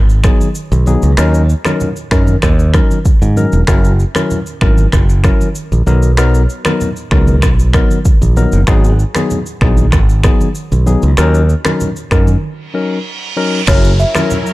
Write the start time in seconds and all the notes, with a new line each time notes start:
Already playing: G#1
0.09 shaker
0.24 F#3 B3 D#4 G#4, finger snap, kick, cross-stick, shaker
0.41 high conga, shaker
0.55 shaker
0.72 B1, high conga, shaker
0.86 F#3 B3 D#4 G#4, high conga, shaker
1.02 C#2, shaker
1.17 D#2 F#3 C#4 D#4 A#4, finger snap, cross-stick, shaker
1.34 shaker
1.49 shaker
1.65 F#3 C#4 D#4 A#4, finger snap, cross-stick, high conga, shaker
1.80 low conga, shaker
1.96 shaker
2.11 F#2 F#3 C#4 D#4 A#4, finger snap, kick, cross-stick, shaker
2.27 high conga, shaker
2.42 D#2, finger snap, kick, cross-stick, low conga, shaker
2.59 shaker
2.74 F#3 C#4 D#4 A#4, finger snap, kick, cross-stick, shaker
2.91 high conga, shaker
3.05 kick, shaker
3.22 G#2, high conga, shaker
3.37 F#3 C#4 D#4 A#4, high conga, shaker
3.52 E1, shaker
3.67 F#1 F#3 C#4 E4 A#4, finger snap, kick, cross-stick, shaker
3.84 shaker
4.00 shaker
4.15 F#3 C#4 E4 A#4, finger snap, cross-stick, high conga, shaker
4.30 low conga, shaker
4.46 shaker
4.61 G#1 F#3 C#4 E4 A#4, finger snap, kick, cross-stick
4.77 high conga, shaker
4.92 F#1, finger snap, kick, cross-stick, low conga, shaker
5.10 shaker
5.24 F#3 C#4 E4 A#4, finger snap, kick, cross-stick, shaker
5.41 high conga, shaker
5.55 shaker
5.72 A#1, high conga, shaker
5.86 B1 F#3 B3 D#4 A#4, high conga, shaker
6.02 shaker
6.17 F#3 B3 D#4 A#4, finger snap, cross-stick, shaker
6.34 shaker
6.50 shaker
6.65 F#3 B3 D#4 A#4, finger snap, cross-stick, high conga, shaker
6.81 low conga, shaker
6.96 shaker
7.11 C#2 F#3 B3 D#4 A#4, finger snap, kick, cross-stick
7.27 high conga, shaker
7.42 B1, finger snap, kick, cross-stick, low conga, shaker
7.59 shaker
7.73 F#3 B3 D#4 A#4, finger snap, kick, cross-stick, shaker
7.91 high conga, shaker
8.05 kick, shaker
8.22 A#1, high conga, shaker
8.36 F#3 B3 D#4 A#4, high conga, shaker
8.52 F#1, shaker
8.67 G#1 F#3 B3 D#4 G#4, finger snap, kick, cross-stick, shaker
8.84 shaker
8.99 shaker
9.15 F#3 B3 D#4 G#4, finger snap, cross-stick, high conga, shaker
9.30 low conga, shaker
9.46 shaker
9.61 A#1 F#3 B3 D#4 G#4, finger snap, kick, cross-stick
9.77 high conga, shaker
9.92 G#1, finger snap, kick, cross-stick, low conga, shaker
10.09 shaker
10.24 F#3 B3 D#4 G#4, finger snap, kick, cross-stick, shaker
10.41 high conga, shaker
10.55 shaker
10.72 B1, high conga, shaker
10.86 F#3 B3 D#4 G#4, high conga, shaker
11.02 C#2, shaker
11.17 D#2 F#3 C#4 D#4 A#4, finger snap, cross-stick, shaker
11.34 shaker
11.49 shaker
11.65 F#3 C#4 D#4 A#4, finger snap, cross-stick, high conga, shaker
11.80 low conga, shaker
11.96 shaker
12.11 F#2 F#3 C#4 D#4 A#4, finger snap, kick, cross-stick, shaker
12.27 high conga, shaker
12.43 reverse cymbal
12.74 F#3 C#4 D#4 A#4
13.37 F#3 C#4 D#4 A#4
13.67 F#1 F#3 C#4 E4 A#4 C#5, finger snap, kick, cross-stick, crash, downlifter, shaker
13.84 shaker
14.00 E5, shaker
14.15 F#3 C#4 E4 A#4, finger snap, cross-stick, high conga, shaker
14.30 low conga, shaker
14.46 shaker